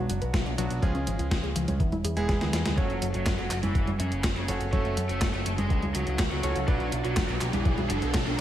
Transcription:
Already playing: F#3 B3 D4 F#4
0.09 F#1 F#3, closed hi-hat
0.21 B1 B4, closed hi-hat
0.33 B1 F#3, kick, snare, closed hi-hat
0.46 B1 D4, closed hi-hat
0.58 B1 F#3 B3 D4 F#4, closed hi-hat
0.70 B1 F#4, closed hi-hat
0.82 C#2 F3 G#3 C#4 F4 G#4, kick, closed hi-hat
0.95 C#2 C#4, closed hi-hat
1.07 G#1 F3, closed hi-hat
1.19 C#2 F4, closed hi-hat
1.31 C#2 F3, kick, snare, closed hi-hat
1.43 C#2 G#4, closed hi-hat
1.56 C#2 F3, closed hi-hat
1.68 C#2 C#4, closed hi-hat, high conga
1.80 E2 E3, kick, closed hi-hat
1.92 E1 E4, closed hi-hat, high conga
2.04 E2 G#4, closed hi-hat
2.17 E1 G#3 B3 E4 G#4, closed hi-hat
2.29 E2 G#3, kick, snare, closed hi-hat
2.41 D2 E3, snare, closed hi-hat, high conga
2.53 E2 E3, snare, closed hi-hat
2.65 D2 E3, snare, closed hi-hat, high conga
2.77 F#1 F#3 C#4 F#4 A4 C#5, kick, closed hi-hat, riser
2.90 F#1 C#4, closed hi-hat
3.02 F#1 F#3, closed hi-hat
3.14 F#1 F#3 F#4, closed hi-hat
3.26 F#2 F#3, kick, snare, clap, closed hi-hat
3.38 F#1 F#3 F#4 A4, closed hi-hat
3.51 F#1 F#3, clap, closed hi-hat
3.63 F#1 E3 C#4 E4, closed hi-hat, high conga
3.75 F#1 F#3, kick, closed hi-hat
3.87 F#1 F#4, closed hi-hat, high conga
3.99 F#2 C#3 F#3 C#4, closed hi-hat
4.12 F#1 A4, closed hi-hat
4.24 F#1 F#3, kick, snare, clap, closed hi-hat
4.36 F#1 C#3 C#4, closed hi-hat
4.48 F#1 F#3 C#4 F#4 A4 C#5, closed hi-hat
4.60 F#1 F#4, closed hi-hat
4.73 F#1 F#3 A3 C#4 F#4 A4 C#5, kick, closed hi-hat
4.85 F#1 C#4, closed hi-hat
4.97 F#2 F#3, closed hi-hat
5.09 F#1 A3 F#4 A4, closed hi-hat
5.21 F#1 F#3, kick, snare, clap, closed hi-hat
5.34 F#1 A3 A4, closed hi-hat
5.46 F#1 F#3, closed hi-hat
5.58 F#1 G#3 C#4 G#4, closed hi-hat, high conga
5.70 C#2 F#3, kick, closed hi-hat
5.82 C#2 F#4, closed hi-hat, high conga
5.94 C#2 F#3 F#4, closed hi-hat
6.07 C#2 A4, closed hi-hat
6.19 C#2 F#3, kick, snare, clap, closed hi-hat
6.31 C#2 F#3 C#4 F#4, closed hi-hat
6.43 C#2 F#3 C#4 F#4 A4 C#5, closed hi-hat
6.56 C#2 F#4, closed hi-hat
6.68 B1 F#3 D4 F#4 B4 D5, kick, closed hi-hat
6.80 B1 D4, closed hi-hat
6.92 B1 F#3, closed hi-hat
7.04 B1 F#3 F#4, closed hi-hat
7.16 F#1 F#3, kick, snare, clap, closed hi-hat
7.29 B1 F#3 F#4 B4, closed hi-hat
7.41 B1 F#3, clap, closed hi-hat
7.53 B1 E3 D4 E4, closed hi-hat, high conga
7.65 B1 F#3, kick, closed hi-hat
7.78 B1 F#4, closed hi-hat, high conga
7.90 F#1 D3 F#3 D4, closed hi-hat
8.02 B1 B4, closed hi-hat
8.14 B1 F#3, kick, snare, clap, closed hi-hat
8.26 B1 D3 D4, closed hi-hat

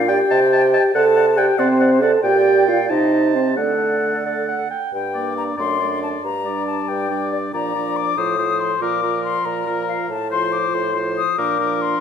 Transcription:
Already playing: A#2 F5
0.00 F4
0.08 G4 D5 G5
0.31 C3 D#5 A5
0.52 D#5 A5
0.73 D#5 A5
0.95 C3 A4 D5 F#5 A5
1.16 D5 F#5
1.37 G4 D5 F#5 G5
1.58 C3 C4 C5 D5 F#5
1.80 D5 F#5
2.02 A4 D5 F#5 A5
2.24 A#2 G4 D5 G5
2.68 F4 F5
2.90 C3 D#4 D#5 A5
3.35 C4 C5
3.57 D3 A3 A4 D5 F#5
4.26 D5
4.48 F#5
4.71 G5
4.93 G2 G5
5.14 A#3 D4 D5
5.38 A#5
5.58 F#2 A3 D4 D5 C6
5.80 A3 D4 D5
6.03 A5
6.24 G2 A#5
6.45 G3 D4 D5
6.67 A5
6.88 G2 G5
7.10 G3 D4 D5
7.32 D5
7.53 A#2 F3 D4 D5 A#5
7.75 F3 D4 D5
7.96 D6
8.17 A2 F3 F4 C5 D#6
8.39 F3 F4 C5
8.60 C6
8.81 A#2 F3 F4 A#4 D6
9.03 F3 F4 A#4
9.24 C6
9.45 A#2 A#5
9.66 F3 F4 A#4
9.88 F5
10.09 A2 A5
10.31 F3 F4 C5 C6
10.52 D6
10.74 A2 C6
10.95 F3 F4 C5
11.17 D#6
11.38 A#2 F3 D4 A#4 D6
11.60 F3 D4 A#4
11.82 C6

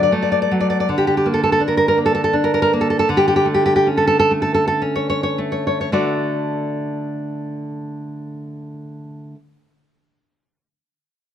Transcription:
Already playing: D3 F#3 A3
0.03 D5
0.12 A3
0.22 D5
0.32 D5
0.42 D5
0.51 F#3
0.60 D5
0.70 D5
0.80 D5
0.89 D3
0.98 G4
1.07 G4
1.17 G4
1.26 A#3
1.34 A4
1.43 A4
1.52 A4
1.60 D4
1.68 A#4
1.77 A#4
1.88 A#4
1.98 A#3
2.06 A4
2.15 A4
2.24 A4
2.33 D4
2.44 A#4
2.54 A#4
2.62 A#4
2.73 A#3
2.81 A4
2.90 A4
2.99 A4
3.09 D3
3.17 G4
3.28 G4
3.36 G4
3.45 A3
3.54 G4
3.66 G4
3.76 G4
3.87 C#4
3.97 A4
4.07 A4
4.20 A4
4.31 A3
4.42 A4
4.54 A4
4.68 A4
4.82 C#4
4.96 C#5
5.10 C#5
5.23 C#5
5.38 A3
5.52 C#5
5.67 C#5
5.81 C#5
5.92 D3 A3 F#4 A4 D5

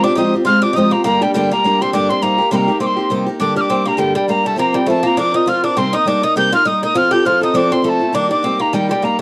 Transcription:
0.03 D4 F4 G4 D6
0.08 C4
0.15 F3 G#3 C4 D#4 F4 G4 D#6
0.34 C4 F4 G4
0.45 G#3 C4 F4 G4 F6
0.62 C4 D4 F4 G4 D6
0.73 F3 G#3 D#4 D#6
0.77 C4 F4 G4
0.91 A#3 C4 F4 G4 A#5
1.04 G2 D3 G3 A#3 D4 G4 A#5
1.21 G3 A#3 D4 G4 G5
1.34 G2 D3 G3 A#3 D4 G4 G5
1.51 G3 A#3 D4 G4 A#5
1.64 G3 A#3 D4 G4
1.81 G3 A#3 C4 D4 G4 C6
1.93 G2 D3 G3 A#3 D4 G4 D6
2.09 G3 A#3 C4 D4 G4 C6
2.22 C3 G3 A#3 D#4 G4 A#5
2.38 A#3 D#4 G4
2.51 C3 G3 A#3 D#4 G4 C6
2.56 A#5
2.68 A#3 D#4 G4
2.80 G3 A#3 C4 D#4 G4 D6
2.86 C6
2.97 A#3 D#4 G4
3.10 C3 G3 A#3 D#4 G4
3.26 A#3 D#4 G4
3.40 G2 D3 G3 A#3 D4 G4 D6
3.56 G3 A#3 D4 G4 F6
3.61 D6
3.69 G3 A#3 C4 D4 G4
3.86 G3 A#3 D4 G4 A#5
3.97 G2 D3 G3 A#3 D4 G4 G5
4.15 G3 A#3 D4 G4 G5
4.28 G3 A#3 D4 G4 A#5
4.44 G3 A3 A#3 D4 G4 A5
4.56 F3 A#3 C4 F4 A#4 A#5
4.73 G3 C4 F4 A#4 G5
4.86 F3 A3 C4 F4 A#4 A5
5.03 A#3 F4 A#4 A#5
5.07 C4
5.17 F3 C4 D4 F4 A#4 D6
5.32 C4 D#4 F4 A#4 D#6
5.46 F3 C4 F4 A#4 F6
5.64 C4 D4 F4 A#4 D6
5.77 C3 G3 A#3 C4 D#4 A#4 C6
5.93 A#3 D#4 A#4 D#6
6.05 G3 A#3 D4 D#4 A#4 D6
6.22 A#3 D#4 A#4 D#6
6.36 C3 G3 A#3 D#4 G4 A#4 G6
6.53 A#3 D#4 F4 A#4 F6
6.65 G3 A#3 D#4 A#4 D#6
6.82 A#3 D#4 A#4 D#6
6.94 F3 C4 F4 A4 F6
7.11 C4 F4 G4 A4 G6
7.25 F3 C4 F4 A4 F6
7.41 C4 D#4 F4 A4 D#6
7.54 F3 C4 D4 F4 A4 D6
7.70 C4 F4 A4 C6
7.82 F3 A3 C4 F4 A4 C6
7.89 A5
8.00 C4 F4 A4
8.13 D#3 G3 A#3 D4 D#4 G4 D6
8.29 A#3 D4 D#4 G4 D6
8.43 G3 A#3 C4 D#4 G4
8.60 A#3 D#4 G4 A#5
8.73 D#3 G3 A#3 D#4 G4 G5
8.89 G3 A#3 D#4 G4 G5
9.02 G3 A#3 D#4 G4 A#5

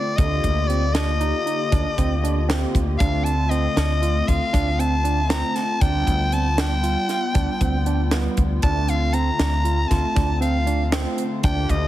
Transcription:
Already playing: D3 A3 C4 F4 D5
0.16 D2 D3 A#3 F4 G4 D#5, kick, closed hi-hat
0.44 D2, kick, closed hi-hat
0.68 C4 D5, closed hi-hat
0.93 D4 D#5, snare, closed hi-hat
1.21 D#4, closed hi-hat
1.46 D#4, closed hi-hat
1.72 D2 D4, kick, closed hi-hat
1.98 D2 C4, kick, closed hi-hat
2.24 D4, closed hi-hat
2.49 C4, snare, closed hi-hat
2.75 D2, kick, closed hi-hat
2.99 D2 D3 A3 C4 D4 F4 F5, kick, closed hi-hat
3.24 A5, closed hi-hat
3.50 C4 D#5, closed hi-hat
3.76 D2 D4, snare, closed hi-hat
4.02 F4, closed hi-hat
4.28 D2 F4 F5, kick, closed hi-hat
4.53 D2 D4, kick, closed hi-hat
4.79 C4 A5, closed hi-hat
5.04 D4, closed hi-hat
5.30 C4 A#5, snare, closed hi-hat
5.55 A5, snare, closed hi-hat
5.81 D2 G3 B3 D4 F4 G5, kick, closed hi-hat
6.07 D2, kick, closed hi-hat
6.32 C4 A5, closed hi-hat
6.58 D4 G5, snare, closed hi-hat
6.83 F4, closed hi-hat
7.09 F4, snare, closed hi-hat
7.35 D2 D4, kick, closed hi-hat
7.61 D2 C4, kick, closed hi-hat
7.86 D4, closed hi-hat
8.11 B3, snare, closed hi-hat
8.37 D2, kick, closed hi-hat
8.62 D2 D3 A3 C4 D4 F4 A5, kick, closed hi-hat
8.88 F5, closed hi-hat
9.13 C4 A#5, closed hi-hat
9.39 D2 D4, snare, closed hi-hat
9.64 F4, closed hi-hat
9.88 D2 F4 A5, kick, snare, closed hi-hat
10.16 D2 D4, kick, snare, closed hi-hat
10.41 C4 F5, closed hi-hat
10.66 D4, closed hi-hat
10.92 C4, snare, closed hi-hat
11.18 closed hi-hat
11.43 D2 D3 A#3 D4 F4 G4 G5, kick, closed hi-hat
11.69 D2 D#5, kick, closed hi-hat

